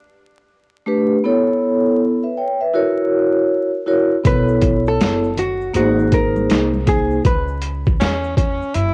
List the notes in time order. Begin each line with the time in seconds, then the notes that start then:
0.86 A3 D4 G4 B4
1.24 B3 E4 A4 C#5
2.24 B4 E5
2.37 C#5 G5
2.61 B4 E5
2.74 E4 F#4 A#4 C#5
3.86 E4 F#4 A#4 C#5
4.23 B1 B3 E4 A4 B4 C#5, kick, closed hi-hat, shaker
4.48 shaker
4.61 kick, closed hi-hat, shaker
4.86 A4, shaker
5.00 F#1, snare, closed hi-hat, high conga, shaker
5.24 shaker
5.37 F#4, closed hi-hat, low conga, shaker
5.61 shaker
5.73 G#1 A#3 D#4 F#4 G#4 C5, closed hi-hat, shaker
5.99 shaker
6.12 A#4, kick, closed hi-hat, shaker
6.36 high conga, shaker
6.50 C2, snare, closed hi-hat, shaker
6.74 high conga, shaker
6.86 A#3 D#4 G#4 C5, kick, closed hi-hat, low conga, shaker
7.11 shaker
7.25 C#2 B4, kick, closed hi-hat, shaker
7.48 shaker
7.61 closed hi-hat, shaker
7.86 kick, shaker
8.00 E2 C#4, snare, closed hi-hat, high conga, shaker
8.24 shaker
8.37 C#4, kick, closed hi-hat, low conga, shaker
8.61 muted upright bass stroke, shaker
8.74 F#1 E4, closed hi-hat, shaker